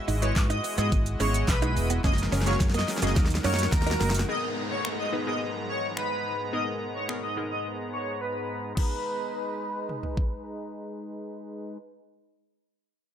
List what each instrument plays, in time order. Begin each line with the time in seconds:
Already playing: pipe organ G#3 E4 F#4 D#5
0.08 fingered electric bass G#1, clean electric guitar D#4, open hi-hat, shaker
0.22 synth pluck G#3 B3 E4 F#4 B4, digital synth lead C#5, muted clean electric guitar stroke, closed hi-hat, shaker
0.36 fingered electric bass G#2, kick, snare, clap, shaker
0.50 clean electric guitar D#4, digital synth lead D#5, closed hi-hat, shaker
0.64 muted clean electric guitar stroke, open hi-hat, shaker
0.78 fingered electric bass G#2, synth pluck G#3 B3 E4 F#4 G#4, clean electric guitar B3, digital synth lead D#5, closed hi-hat, shaker
0.92 fingered electric bass G#1, kick, shaker
1.06 closed hi-hat, shaker
1.20 fingered electric bass G#1, synth pluck G#3 B3 E4 F#4 G#4, clean electric guitar C#4, digital synth lead C#5, open hi-hat, shaker
1.34 closed hi-hat, shaker
1.48 fingered electric bass B1, digital synth lead B4, kick, snare, clap, shaker
1.62 synth pluck G#3 B3 E4 F#4 G#4, clean electric guitar D#4, closed hi-hat, shaker
1.76 fingered electric bass E1, muted clean electric guitar stroke, open hi-hat, shaker
1.90 clean electric guitar B3, closed hi-hat, shaker
2.04 fingered electric bass F#1, pipe organ F#3 C#4 G#4 A#4, synth pluck G#3 A#3 C#4 F#4 G#4, clean electric guitar C#4, digital synth lead D#5, kick, snare, shaker
2.14 snare
2.18 closed hi-hat, shaker
2.23 snare
2.32 fingered electric bass F#1, clean electric guitar C#4, snare, open hi-hat, shaker
2.42 snare
2.46 synth pluck G#3 A#3 C#4 F#4 G#4, digital synth lead C#5, muted clean electric guitar stroke, closed hi-hat, shaker
2.51 snare
2.60 fingered electric bass F#2, kick, snare, shaker
2.70 snare
2.74 clean electric guitar A#3, digital synth lead D#5, closed hi-hat, shaker
2.79 snare
2.88 muted clean electric guitar stroke, snare, open hi-hat, shaker
2.98 snare
3.02 fingered electric bass F#1, synth pluck G#3 A#3 C#4 F#4 G#4, clean electric guitar A#3, digital synth lead D#5, closed hi-hat, shaker
3.07 snare
3.16 fingered electric bass D#2, pipe organ D#3 D#4 F#4, synth pluck F#3 A#3 D#4 F#4 A#4, kick, snare, shaker
3.26 snare
3.30 closed hi-hat, shaker
3.35 snare
3.44 fingered electric bass F#2, synth pluck F#3 A#3 D#4 F#4 A#4, clean electric guitar C#4, digital synth lead C#5, snare, open hi-hat, shaker
3.54 snare
3.59 closed hi-hat, shaker
3.63 snare
3.72 fingered electric bass D#2, digital synth lead A#4, muted clean electric guitar stroke, kick, snare, shaker
3.82 snare
3.86 synth pluck F#3 A#3 D#4 F#4 A#4, clean electric guitar D#4, closed hi-hat, shaker
3.91 snare
4.00 fingered electric bass F#1, clean electric guitar A#3, snare, open hi-hat, shaker
4.10 snare
4.14 closed hi-hat, shaker
4.19 snare
4.28 pipe organ G#2 G#3 B3 A#5, synth pluck B3 D#4 G#4 A#4, digital synth lead D#5, downlifter
4.71 digital synth lead C#5
4.85 finger snap
4.99 digital synth lead D#5
5.12 synth pluck B3 D#4 G#4 B4
5.27 synth pluck B3 D#4 G#4 A#4, digital synth lead D#5
5.69 digital synth lead C#5
5.97 digital synth lead B4, finger snap
6.53 synth pluck B3 D#4 G#4 A#4, digital synth lead D#5
6.95 digital synth lead C#5
7.09 synth pluck B3 D#4 G#4 A#4, finger snap
7.23 digital synth lead D#5
7.37 synth pluck B3 D#4 G#4 A#4
7.51 digital synth lead D#5
7.93 digital synth lead C#5
8.21 digital synth lead B4
8.75 pipe organ G#3 D#4 B4 A#5, synth pluck B3 D#4 G#4, digital synth lead B4, kick, crash
8.79 synth pluck A#5
9.89 mid tom
10.03 floor tom
10.17 kick